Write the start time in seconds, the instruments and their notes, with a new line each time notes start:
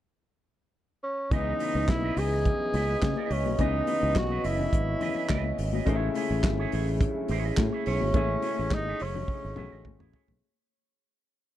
1.03 tenor saxophone C#4
1.31 fingered electric bass C#2, french horn section C#3 E3 B3 D#5, grand piano C#3 E3 B3 D#4, tenor saxophone D#4, clean electric guitar E4 B4 D#5, kick, closed hi-hat
1.59 clean electric guitar E4 B4 D#5, open hi-hat, muted conga
1.75 fingered electric bass C#2, clean electric guitar E4 B4 D#5
1.88 fingered electric bass B1, tenor saxophone E4, kick, snare, clap, closed hi-hat, high conga
2.04 clean electric guitar E4 B4 D#5
2.17 fingered electric bass C#2, clean electric guitar E4 B4 D#5, tenor saxophone G#4, open hi-hat
2.34 muted clean electric guitar stroke
2.45 muted clean electric guitar stroke, kick, closed hi-hat, low conga
2.61 muted clean electric guitar stroke
2.74 fingered electric bass C#2, clean electric guitar E4 B4 D#5, open hi-hat, muted conga
2.88 clean electric guitar E4 B4 E5
3.02 fingered electric bass C#3, muted clean electric guitar stroke, kick, snare, clap, closed hi-hat, high conga
3.16 clean electric guitar E4 B4 D#5
3.30 fingered electric bass C#2, tenor saxophone C#4, clean electric guitar E4 B4 D#5, open hi-hat
3.46 fingered electric bass B1, muted clean electric guitar stroke, high conga
3.57 fingered electric bass C#2, grand piano C#3 E3 B3 D#5, french horn section C#4, clean electric guitar E4 B4 D#5, kick, closed hi-hat, muted conga
3.61 tenor saxophone D#4
3.87 clean electric guitar E4 B4 D#5, open hi-hat, muted conga
4.02 fingered electric bass C#2, clean electric guitar E4 B4 D#5
4.15 fingered electric bass B1, tenor saxophone F#4, kick, snare, clap, closed hi-hat, high conga
4.30 clean electric guitar E4 B4 D#5
4.43 fingered electric bass F#1, clean electric guitar E4 B4 D#5, tenor saxophone E4, open hi-hat
4.59 muted clean electric guitar stroke, low conga
4.73 fingered electric bass G#1, muted clean electric guitar stroke, kick, closed hi-hat
4.87 muted clean electric guitar stroke
5.00 clean electric guitar E4 B4 D#5, open hi-hat, muted conga, low conga
5.16 clean electric guitar E4 B4 E5
5.28 fingered electric bass C#2, clean electric guitar E4 B4 D#5, kick, snare, clap, closed hi-hat, high conga
5.44 muted clean electric guitar stroke
5.58 fingered electric bass G#1, muted clean electric guitar stroke, open hi-hat
5.73 clean electric guitar E4 B4 D#5, high conga
5.85 fingered electric bass A1, grand piano C#3 G#3 A3 D#4, french horn section C#4 E4 G#4, clean electric guitar E4 G#4 C#5, kick, closed hi-hat
5.95 grand piano E4
6.14 clean electric guitar E4 G#4 C#5, open hi-hat, muted conga
6.31 fingered electric bass A1, clean electric guitar E4 G#4 C#5
6.43 fingered electric bass G#1, muted clean electric guitar stroke, kick, snare, clap, closed hi-hat, high conga
6.59 clean electric guitar E4 G#4 C#5
6.72 fingered electric bass A1, clean electric guitar E4 G#4 C#5, open hi-hat
6.89 muted clean electric guitar stroke
7.00 muted clean electric guitar stroke, kick, closed hi-hat, low conga
7.17 muted clean electric guitar stroke
7.28 fingered electric bass A1, clean electric guitar E4 G#4 C#5, open hi-hat, muted conga
7.45 clean electric guitar E4 G#4 D#5
7.57 fingered electric bass A2, muted clean electric guitar stroke, kick, snare, clap, closed hi-hat, high conga
7.72 clean electric guitar E4 G#4 C#5
7.86 fingered electric bass B1, tenor saxophone C#4, clean electric guitar E4 G#4 C#5, open hi-hat
8.00 fingered electric bass G#1, muted clean electric guitar stroke, high conga
8.13 fingered electric bass A1, grand piano C#3 G#3 A3 E4, clean electric guitar E4 G#4 C#5, kick, closed hi-hat
8.42 clean electric guitar E4 G#4 C#5, open hi-hat, muted conga
8.57 fingered electric bass A1, clean electric guitar E4 G#4 C#5
8.71 fingered electric bass G#1, tenor saxophone D#4, muted clean electric guitar stroke, kick, snare, clap, closed hi-hat, high conga
8.88 clean electric guitar E4 G#4 C#5
9.00 fingered electric bass F#1, tenor saxophone C#4, clean electric guitar E4 G#4 C#5, open hi-hat
9.15 muted clean electric guitar stroke, low conga
9.28 muted clean electric guitar stroke, kick, high tom
9.44 fingered electric bass G#1, muted clean electric guitar stroke
9.55 fingered electric bass B1, grand piano C#3 G#3 A3 F#4, clean electric guitar E4 G#4 C#5, mid tom, muted conga, low conga
9.72 fingered electric bass A1, clean electric guitar E4 G#4 D#5
9.85 muted clean electric guitar stroke, kick, mid tom, high conga
9.99 fingered electric bass A1, clean electric guitar E4 G#4 C#5, mid tom
10.13 clean electric guitar E4 G#4 C#5, floor tom
10.28 fingered electric bass B1, muted clean electric guitar stroke, floor tom, high conga